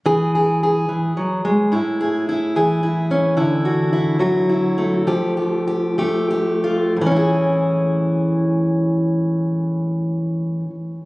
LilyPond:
\new Staff \with { instrumentName = "Steel-string acoustic guitar" } { \time 6/8 \key a \major \tempo 4. = 68 << { gis'8 gis'8 gis'2 | e'8 gis'8 e'8 gis'8 e'8 cis'8 | e'8 fis'8 e'8 fis'8 e'8 a8 | g'8 g'8 g'8 g'8 g'8 f'8 |
<e cis' e' gis'>2.~ | <e cis' e' gis'>2. | } \\ { e4. e8 fis8 gis8 | a,4. e4. | d4. fis4. | f4. a4. |
a,2.~ | a,2. | } >> }